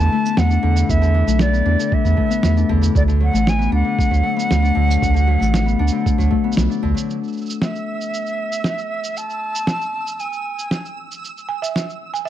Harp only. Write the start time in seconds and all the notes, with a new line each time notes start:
Already playing: D3 A3 B3 D4 A4
0.00 E3
0.12 A3
0.25 B3
0.50 D4
0.63 D3
0.76 E3
1.02 D3
1.14 E3
1.27 A3
1.53 B3
1.65 D4
1.79 D3
2.05 E3
2.17 A3
2.30 B3
2.57 D4
2.69 D3
2.81 E3
3.08 D3
3.20 F#3
3.33 A3
3.59 B3
3.72 D4
3.85 D3
4.11 F#3
4.23 A3
4.36 B3
4.62 D4
4.75 D3
4.88 F#3
5.14 D3
5.27 F#3
5.40 A3
5.66 B3
5.79 D4
5.92 D3
6.18 F#3
6.31 A3
6.44 B3
6.70 D4
6.83 D3
6.94 F#3